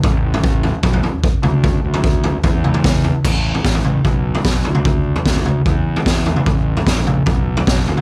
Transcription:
<<
  \new Staff \with { instrumentName = "Fingered electric bass" } { \clef bass \time 4/4 \key d \major \tempo 4 = 149 a,,2 b,,8 r4 d,8~ | d,8 d,4. e,2 | a,,4 a,,4 b,,4 b,,8 d,8~ | d,4 d,4 e,4 e,4 |
a,,4 bes,,4 b,,4 b,,8 d,8 | }
  \new DrumStaff \with { instrumentName = "Drums" } \drummode { \time 4/4 <bd tomfh>8. tomfh16 bd8 tomfh8 <bd tomfh>16 tomfh16 tomfh8 bd8 <tomfh toml>8 | <bd tomfh>8. tomfh16 bd8 tomfh8 <bd tomfh>8 toml16 toml16 <bd sn toml>8 tomfh8 | <cymc bd tomfh>8. tomfh16 <bd sn>16 tomfh16 toml8 <bd tomfh>8. tomfh16 <bd sn>8 tomfh16 toml16 | <bd tomfh>8. tomfh16 <bd sn>16 tomfh16 toml8 <bd tomfh>8. tomfh16 <bd sn>8 tomfh16 toml16 |
<bd tomfh>8. tomfh16 <bd sn>16 tomfh16 toml8 <bd tomfh>8. tomfh16 <bd sn>8 tomfh16 toml16 | }
>>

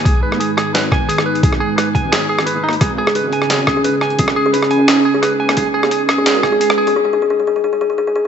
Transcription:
<<
  \new Staff \with { instrumentName = "Clean electric guitar" } { \time 4/4 \key gis \minor \tempo 4 = 174 gis'8 b'8 gis'8 gis'8 b'8 gis''8 gis'8 b'8 | gis'8 gis'8 b'8 gis''8 gis'8 gis'8 b'8 dis'8 | gis'8 gis'8 b'8 gis''8 gis'8 gis'8 b'8 gis''8 | gis'8 gis'8 b'8 gis''8 gis'8 gis'8 b'8 gis''8 |
gis'8 gis'8 gis'8 gis'8 gis'8 gis'8 gis'8 gis'8 | r1 | }
  \new Staff \with { instrumentName = "Kalimba" } { \time 4/4 \key gis \minor r1 | r1 | r8. gis'16 gis'16 r4. gis'16 gis'16 r8. | r8. gis'16 gis'16 r4. gis'16 gis'16 r8. |
r8. gis'16 r8. gis'16 r8. gis'16 r8. gis'16 | gis'16 gis'16 gis'16 gis'16 gis'16 gis'16 gis'16 gis'16 gis'16 gis'16 gis'16 gis'16 gis'16 gis'16 gis'16 r16 | }
  \new Staff \with { instrumentName = "Analog synth pad" } { \time 4/4 \key gis \minor << { <gis b'>1~ | <gis b'>1~ | <gis b'>1~ | <gis b'>1~ |
<gis b'>1 | r1 | } \\ { dis'1~ | dis'1 | cis'1~ | cis'1~ |
cis'1 | r1 | } >> }
  \new Staff \with { instrumentName = "Wobble bass" } { \clef bass \time 4/4 \key gis \minor dis,4 r8 gis,,2~ gis,,8~ | gis,,8 r4 gis,,4. fis,,8 dis,8 | gis,,4. gis,,2~ gis,,8~ | gis,,8 r4 gis,,8 gis,8 r4 dis,8~ |
dis,4 r8 gis,,2~ gis,,8 | r1 | }
  \new DrumStaff \with { instrumentName = "Drums" } \drummode { \time 4/4 <hh bd>8. ss16 hh8 <hh ss>8 <hh sn>8 <bd ss>8 hh16 ss8 hh16 | <hh bd>16 ss8. <hh ss>8 <hh bd>8 <hh ss sn>8. ss16 hh8 r32 ss32 hh16 | <hh bd ss>8. ss16 hh8 hh16 ss16 <hh sn>8 <bd ss>8 hh8 ss16 hh16 | <hh bd>16 ss8. hh16 ss16 hh8 <hh ss sn>4 <hh ss>8. <hh ss>16 |
<hh bd>8. ss16 hh8 <hh ss>8 <hh sn>8 <bd ss>8 hh16 ss8 hh16 | r4 r4 r4 r4 | }
>>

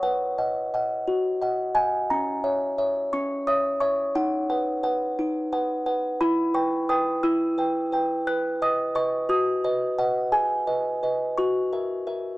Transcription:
\new Staff \with { instrumentName = "Music box" } { \time 6/8 \key b \major \tempo 4. = 58 << { fis''2 r8 gis''8 | ais''4. cis'''8 dis'''8 cis'''8 | fis''2 r4 | b''8 cis'''8 dis'''8 e'''4. |
fis'''8 dis'''8 cis'''8 dis'''4 fis''8 | gis''4. cis'''4. | } \\ { b'8 <dis'' fis''>8 <dis'' fis''>8 fis'8 <dis'' fis''>8 <dis'' fis''>8 | cis'8 <cis'' e''>8 <cis'' e''>8 cis'8 <cis'' e''>8 <cis'' e''>8 | dis'8 <b' fis''>8 <b' fis''>8 dis'8 <b' fis''>8 <b' fis''>8 | e'8 <b' g''>8 <b' g''>8 e'8 <b' g''>8 <b' g''>8 |
b'8 <b' dis''>8 <b' dis''>8 fis'8 <b' dis''>8 <b' dis''>8 | gis'8 <b' dis''>8 <b' dis''>8 fis'8 <ais' e''>8 <ais' e''>8 | } >> }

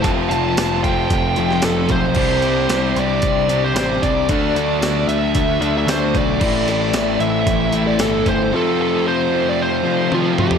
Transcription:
<<
  \new Staff \with { instrumentName = "Lead electric guitar" } { \time 4/4 \key f \lydian \tempo 4 = 113 a''8 a''4 g''4. a'8 c''8~ | c''4. d''4~ d''16 c''16 c''8 d''8~ | d''4. e''4~ e''16 e''16 c''8 d''8~ | d''8 d''4 e''4~ e''16 d''16 a'8 c''8 |
a'8 a'8 c''8. d''16 c''4 f'8 g'8 | }
  \new Staff \with { instrumentName = "Overdriven electric guitar" } { \time 4/4 \key f \lydian <f, c f a c' f'>8 <f a c' f'>8 <f a c' f'>8 <f a c' f'>4 <f a c' f'>8 <f, c f a c' f'>4 | <c g c' d' g'>8 <c' d' g'>8 <g c' d' g'>8 <c' d' g'>4 <c' d' g'>8 <c g c' d' g'>4 | <d a d' fis'>8 <a d' fis'>8 <d a d' fis'>8 <a d' fis'>4 <a d' fis'>8 <d a d' fis'>4 | <a, e a c' e'>8 <a c' e'>8 <e a c' e'>8 <a c' e'>4 <a c' e'>8 <a, e a c' e'>4 |
<f, c f a c' f'>8 <f a c' f'>8 <f a c' f'>8 <f a c' f'>4 <f a c' f'>8 <f, c f a c' f'>4 | }
  \new Staff \with { instrumentName = "Distorted electric guitar" } { \time 4/4 \key f \lydian <f a c' f'>1 | <c g c' d'>1 | <d fis a d'>1 | <a, e a c' e'>1 |
<f a c' f'>1 | }
  \new Staff \with { instrumentName = "Overdriven electric guitar" } { \clef bass \time 4/4 \key f \lydian <f, c f>2~ <f, c f>8 <f, c f>8 <f, c f>4 | <c g c'>2~ <c g c'>8 <c g c'>8 <c g c'>4 | <d a d'>2~ <d a d'>8 <d a d'>8 <d a d'>4 | <a, e a>2~ <a, e a>8 <a, e a>8 <a, e a>4 |
<f, c f>2~ <f, c f>8 <f, c f>8 <f, c f>4 | }
  \new Staff \with { instrumentName = "Picked electric bass" } { \clef bass \time 4/4 \key f \lydian f,,8 f,,8 f,,8 f,,8 f,,8 f,,8 f,,8 b,,8 | c,4 c,8 c,8 c,4 a,,8 c,8 | d,8 d,8 d,8 d,8 d,8 d,8 d,8 b,,8 | a,,4 a,,8 a,,8 a,,4 g,,8 g,,8 |
r1 | }
  \new DrumStaff \with { instrumentName = "Drums" } \drummode { \time 4/4 <hh bd>8 hh8 <hh sn tamb>8 <hh bd>8 <hh bd>8 hh16 sn16 <hh sn tamb>8 <hh bd>8 | <cymc bd>8 hh8 <hh sn tamb>8 hh8 <hh bd>8 hh8 <hh sn tamb>8 <hh bd>8 | <hh bd>8 hh8 <hh sn tamb>8 hh8 <hh bd>8 hh8 <hh sn tamb>8 <hh bd>8 | <cymc bd>8 hh8 <hh sn tamb>8 hh8 <hh bd>8 hh8 <hh sn tamb>8 <hh bd>8 |
r4 r4 r4 tommh8 toml16 tomfh16 | }
>>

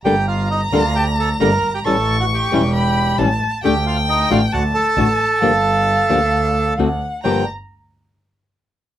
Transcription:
<<
  \new Staff \with { instrumentName = "Violin" } { \time 4/4 \key g \minor \tempo 4 = 134 bes''1 | cis'''2 b''4 a''4 | g''2 a''2 | f''2. fis''4 |
bes''8 r2. r8 | }
  \new Staff \with { instrumentName = "Bandoneon" } { \time 4/4 \key g \minor <g' g''>8 <f' f''>8 <ees' ees''>8 <f' f''>8 <g' g''>8 <a' a''>8 <bes' bes''>8. <g' g''>16 | <a' a''>8. <fis' fis''>16 <g' g''>2 r4 | <g' g''>8 <f' f''>8 <ees' ees''>8 <f' f''>8 <fis' fis''>8 <a' a''>4.~ | <a' a''>2. r4 |
g''8 r2. r8 | }
  \new Staff \with { instrumentName = "Nylon-string guitar" } { \time 4/4 \key g \minor <d g bes d' a'>8 r4 <d g bes d' a'>8 r4 <d g bes d' a'>8 r8 | <e g cis' e'>8 r4 <e g cis' e'>8 r4 <e g cis' e'>8 r8 | <d a d' g'>8 r4 <d a d' fis'>8 r4 <d a d' fis'>8 r8 | <d f bes d' g'>8 r4 <d f bes d' g'>8 r4 <d a c' fis'>8 r8 |
<g, d f bes d' g'>8 r2. r8 | }
  \new Staff \with { instrumentName = "Double bass" } { \clef bass \time 4/4 \key g \minor g,,4. d,4. g,,8 g,,8 | a,,4. e,,4. a,,8 r8 | d,4. a,,8 d,8 r8 a,,8 r8 | g,,4. d,4. d,8 r8 |
g,,8 r2. r8 | }
>>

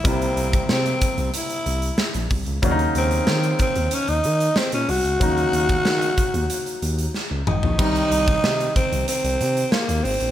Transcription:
<<
  \new Staff \with { instrumentName = "Tenor saxophone" } { \time 4/4 \key c \phrygian \tempo 4 = 93 c'4 c'4 e'4. r8 | r8 c'4 c'8 des'16 ees'8. c'16 des'16 ges'8~ | ges'2. r8 ees'8~ | ees'4. c'8 c'4 bes8 c'8 | }
  \new Staff \with { instrumentName = "Grand piano" } { \clef bass \time 4/4 \key c \phrygian <c g bes e'>1 | <des ges bes d' ees'>1 | <des ges bes ees'>1 | <c ees g ees'>1 | }
  \new Staff \with { instrumentName = "Analog synth bass" } { \clef bass \time 4/4 \key c \phrygian c,8 c,8 c8 r16 c,16 r8 c,8 r16 bes,,16 c,16 des,16 | ees,8 ees,8 ees8 r16 ees,16 r16 ees,16 ees8 r16 bes,16 c,16 des,16 | ees,8 ees,8 ees8 r16 ees,16 r8 ees,8 r16 des,16 aes,,16 bes,,16 | c,8 c,8 c8 r16 c,16 r16 c,16 c8 r16 ees,16 aes,,16 bes,,16 | }
  \new DrumStaff \with { instrumentName = "Drums" } \drummode { \time 4/4 <hh bd>16 hh16 hh16 <hh bd>16 sn16 hh16 <hh bd>16 hh16 hh16 hh16 hh16 hh16 sn16 hh16 <hho bd>16 hh16 | <hh bd>16 hh16 hh16 hh16 sn16 hh16 <hh bd>16 hh16 hh16 hh16 hh16 hh16 sn16 hh16 hho16 hh16 | <hh bd>16 hh16 hh16 <hh bd>16 sn16 hh16 <hh bd>16 hh16 hh16 hh16 hh16 hh16 sn8 toml16 tomfh16 | <cymc bd>16 hh16 hh16 <hh bd>16 sn16 hh16 <hh bd>16 hh16 hh16 hh16 hh16 hh16 sn16 hh16 hho16 hh16 | }
>>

